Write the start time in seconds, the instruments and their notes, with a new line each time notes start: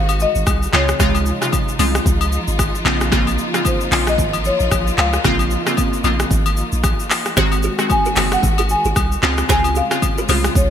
Already playing: sub bass G#1, string section D#3 G#3 D#4 F#4, marimba F5
0.09 high agogo, shaker
0.20 marimba D#5, shaker
0.35 sub bass G#1, shaker
0.47 sub bass C2, kick, cross-stick, high agogo, shaker
0.63 shaker
0.73 sub bass C#2, synth pluck C#3 G#3 C4 F4, string section F3 F4, marimba C#5, clap, high agogo
0.89 cross-stick, shaker
0.99 sub bass C#2, synth pluck C3 C#3 G#3 F4, kick, cross-stick, shaker
1.15 high agogo, shaker
1.26 shaker
1.41 synth pluck C3 C#3 G#3 F4, cross-stick, shaker
1.53 kick, high agogo, shaker
1.68 shaker
1.79 sub bass C2, synth pluck C#3 G#3 C4 F4, open hi-hat, high agogo, shaker
1.95 cross-stick, shaker
2.06 sub bass C#2, kick, shaker
2.21 high agogo, shaker
2.32 shaker
2.48 sub bass G#1, shaker
2.59 kick, cross-stick, high agogo, shaker
2.75 shaker
2.85 sub bass A#1, synth pluck C#3 A#3 C4 F4, string section A#3, clap, high agogo
3.01 cross-stick, shaker
3.11 synth pluck C#3 A#3 C4 F4, kick, cross-stick, shaker
3.27 high agogo, shaker
3.38 shaker
3.54 synth pluck C#3 A#3 C4 F4, cross-stick, shaker
3.65 marimba C5, kick, high agogo, shaker
3.81 shaker
3.92 sub bass A#1, synth pluck C#3 A#3 C4 F4, clap, open hi-hat, high agogo, shaker
4.07 marimba D#5, cross-stick, shaker
4.18 sub bass G#1, kick, shaker
4.33 high agogo, shaker
4.45 marimba C#5, shaker
4.60 sub bass A#1, shaker
4.71 sub bass A#1, kick, cross-stick, high agogo, shaker
4.87 shaker
4.98 sub bass C#2, marimba F5, clap, high agogo
5.13 cross-stick, shaker
5.24 sub bass A#1, synth pluck C#3 A#3 C4 F4, kick, cross-stick, shaker
5.39 high agogo, shaker
5.51 shaker
5.66 synth pluck C#3 A#3 C4 F4, cross-stick, shaker
5.77 kick, high agogo, shaker
5.93 shaker
6.04 sub bass A#1, synth pluck C#3 A#3 C4 F4, high agogo, shaker
6.20 cross-stick, shaker
6.31 sub bass G#1, kick, shaker
6.46 high agogo, shaker
6.57 shaker
6.72 sub bass A#1, shaker
6.84 kick, cross-stick, high agogo, shaker
7.00 shaker
7.10 clap, open hi-hat, high agogo, shaker
7.25 cross-stick, shaker
7.37 sub bass G#1, synth pluck D#3 G#3 C4 F#4, string section D#3 G#3 F#4, kalimba G#4 C5, kick, cross-stick, shaker
7.52 high agogo, shaker
7.63 kalimba F4 G#4, shaker
7.79 synth pluck D#3 G#3 C4 F#4, cross-stick, shaker
7.90 marimba G#5, kick, high agogo, shaker
8.05 kalimba F#4 A#4, shaker
8.16 sub bass F#1, synth pluck D#3 G#3 C4 F#4, kalimba G#4 C5, clap, open hi-hat, high agogo, shaker
8.32 marimba F#5, cross-stick, shaker
8.43 sub bass G#1, kick, shaker
8.58 kalimba F4 G#4, high agogo, shaker
8.69 marimba G#5, shaker
8.85 sub bass G#1, kalimba F4 G#4, shaker
8.96 sub bass C2, kick, cross-stick, high agogo, shaker
9.12 shaker
9.22 sub bass C#2, synth pluck C#3 G#3 C4 F4, string section C#3 F4, kalimba C#4 F4, clap, high agogo
9.38 cross-stick, shaker
9.49 sub bass C#2, synth pluck C#3 G#3 C4 F4, kalimba G#4 C5, marimba G#5, kick, cross-stick, shaker
9.64 high agogo, shaker
9.75 kalimba F4 G#4, marimba F5, shaker
9.91 synth pluck C#3 G#3 C4 F4, cross-stick, shaker
10.02 kick, high agogo, shaker
10.18 kalimba F#4 A#4, shaker
10.29 sub bass C2, synth pluck C#3 G#3 C4 F4, kalimba G#4 C5, open hi-hat, high agogo, shaker
10.44 cross-stick, shaker
10.55 sub bass C#2, marimba C#5, kick, shaker